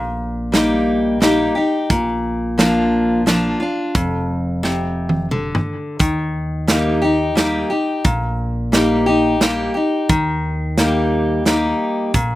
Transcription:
Already playing: A#1 A#2
0.52 G3 A#3 D#4 G4, snare, closed hi-hat
1.21 G3 A#3 D#4 G4, snare, closed hi-hat
1.55 D#4 G4
1.90 A#1 A#2, kick, closed hi-hat
2.58 F3 A#3 D4 F4, snare, closed hi-hat
3.26 F3 A#3 D4 F4, snare, closed hi-hat
3.60 D4 F4
3.95 F1 F2, kick, closed hi-hat
4.63 C3, snare
5.09 high tom
5.31 D3, mid tom
5.55 mid tom
5.99 D#2 D#3, kick, closed hi-hat
6.68 G3 A#3 D#4 G4, snare, closed hi-hat
7.02 D#4 G4
7.35 G3 A#3 D#4 G4, snare, closed hi-hat
7.70 D#4 G4
8.04 A#1 A#2, kick, closed hi-hat
8.72 G3 A#3 D#4 G4, snare, closed hi-hat
9.06 D#4 G4
9.40 G3 A#3 D#4 G4, snare, closed hi-hat
9.74 D#4 G4
10.09 D#2 D#3, kick, closed hi-hat
10.77 G3 A#3 D#4 G4, snare, closed hi-hat
11.45 G3 A#3 D#4 G4, snare, closed hi-hat
12.14 A#1 A#2, kick, closed hi-hat

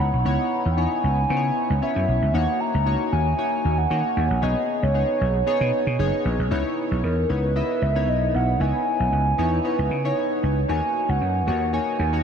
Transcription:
Already playing: B3 D#4 E4 C#5
0.00 F#5
0.13 B1
0.25 C#2 B3 D#4 E4 C#5 F#5
0.65 E2
0.72 G5
0.77 B3 D#4 E4 C#5 G#5
1.04 C#2
1.30 C#3 B3 D#4 E4 C5
1.37 C#5
1.70 C#2
1.82 B3 C#4 E4 C#5 E5
1.96 F#2
2.08 B1
2.22 C#2
2.34 D#2 A#3 D#4 F#4 C#5 F#5
2.60 A#5
2.74 C#2
2.86 A#3 D#4 F#4 C#5
3.12 D#2 G#5
3.38 A#3 D#4 F#4 C#5
3.65 D#2
3.78 F#5
3.90 D#3 A#3 D#4 F#4 C#5
4.17 D#2 F#5
4.30 A#1
4.42 B1 B3 D#4 G#4 C#5 D#5
4.83 C#2 C#5
4.94 B3 D#4 G#4 C#5
5.21 B1
5.46 B3 D#4 G#4 C#5
5.61 B2
5.87 B2
5.99 F#1 B3 D#4 G#4 C#5
6.25 A#1
6.39 B1
6.51 C#2 B3 D#4 E4 C#5
6.91 B1
7.03 E2 A#4
7.29 C#2 B3 D#4 E4 B4 C#5
7.56 B3 E4 D#5 E5
7.82 C#2 E5
7.95 B3 D#4 E4 C#5
8.08 B1 D#5
8.34 B1 F#5
8.60 C#2 B3 D#4 E4 C#5 G#5
9.00 B1
9.12 C#2
9.38 E2 B3 D#4 E4 C#5
9.64 B3 D#4 E4 B4 C#5
9.79 C#2
9.91 C#3
10.04 B3 D#4 E4 C#5
10.43 C#2
10.68 D#2 A#3 D#4 F#4 C#5 G#5
11.09 C#2 F#5
11.21 F#2
11.47 D#2 A#3 D#4 F#4 C#5 F#5
11.73 A#3 D#4 F#4 C#5 G#5
11.99 D#2
12.13 A#3 D#4 F#4 C#5

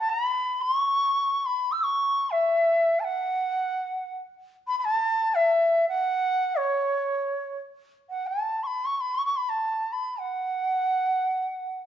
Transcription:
0.00 A5
0.10 B5
0.62 C6
0.77 C#6
1.46 B5
1.72 E6
1.79 E6
1.83 C#6
2.31 E5
3.00 A5
3.04 F#5
4.67 B5
4.79 B5
4.85 A5
5.35 E5
5.89 F#5
6.56 C#5
8.10 F#5
8.27 A5
8.63 B5 C#6
8.85 C#6
8.97 B5 C#6
9.15 C#6
9.26 C#6
9.37 B5
9.49 A5
9.92 B5
10.20 F#5

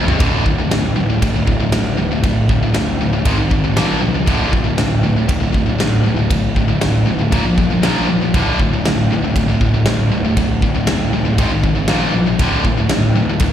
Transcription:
0.08 G1 G2, floor tom
0.19 D1 D2 A2 D3, kick, ride bell
0.45 D1 D2 A2, kick
0.59 D2 A2
0.71 D1 D2 A2, snare, ride bell
0.96 D1 D2 A2
1.10 D2 A2
1.22 D1 D2 A2, kick, ride bell
1.36 D2 A2
1.47 D1 D2 A2, kick
1.60 D2 A2
1.72 D2 A2, snare, ride bell
1.97 D1 D2 A2
2.12 D2 A2
2.23 D1 D2 A2, kick, ride bell
2.49 D1 D2 A2, kick
2.63 D2 A2
2.74 D1 D2 A2, snare, ride bell
3.01 D1 D2 A2
3.13 D2 A2
3.25 G#1 G#2 D#3 G#3, kick, ride bell
3.38 G#2 D#3
3.50 G#1 G#2 D#3, kick
3.64 G#2 D#3
3.76 A#1 A#2 F3 A#3, snare, ride bell
4.02 C#2 A#2 F3
4.14 A#2 F3
4.26 D1 D2 A2 D3, kick, ride bell
4.51 D1 D2 A2, kick
4.64 D2 A2
4.78 D1 D2 A2, snare, ride bell
5.03 D1 D2 A2
5.16 D2 A2
5.28 D1 D2 A2, kick, ride bell
5.40 D2 A2
5.53 D1 D2 A2, kick
5.66 D2 A2
5.78 D2 A2, snare, ride bell
6.03 D1 D2 A2
6.16 D2 A2
6.30 D1 D2 A2, kick, ride bell
6.56 D1 D2 A2, kick
6.68 D2 A2
6.81 D1 D2 A2, snare, ride bell
7.06 D1 D2 A2
7.19 D2 A2
7.32 A#1 A#2 F3 A#3, kick, ride bell
7.45 A#2 F3
7.58 G1 A#2 F3, kick
7.70 A#2 F3
7.82 A#1 A#2 F3 A#3, snare, ride bell
8.08 A#1 A#2 F3
8.21 A#2 F3
8.34 D1 D2 A2 D3, kick, ride bell
8.60 D1 D2 A2, kick
8.73 D2 A2
8.85 D1 D2 A2, snare, ride bell
9.10 D1 D2 A2
9.24 D2 A2
9.36 D1 D2 A2, kick, ride bell
9.49 D2 A2
9.61 D1 D2 A2, kick
9.74 D2 A2
9.86 D2 A2, snare, ride bell
10.11 D1 D2 A2
10.25 D2 A2
10.37 D1 D2 A2, kick, ride bell
10.62 D1 D2 A2, kick
10.75 D2 A2
10.87 D1 D2 A2, snare, ride bell
11.12 D1 D2 A2
11.25 D2 A2
11.38 G#1 G#2 D#3 G#3, kick, ride bell
11.50 G#2 D#3
11.63 G#1 G#2 D#3, kick
11.75 G#2 D#3
11.88 A#1 A#2 F3 A#3, snare, ride bell
12.14 A#1 A#2 F3
12.27 A#2 F3
12.39 D1 D2 A2 D3, kick, ride bell
12.64 D1 D2 A2, kick
12.77 D2 A2
12.89 D1 D2 A2, snare, ride bell
13.15 D1 D2 A2
13.29 D2 A2
13.39 D1 D2 A2, kick, ride bell

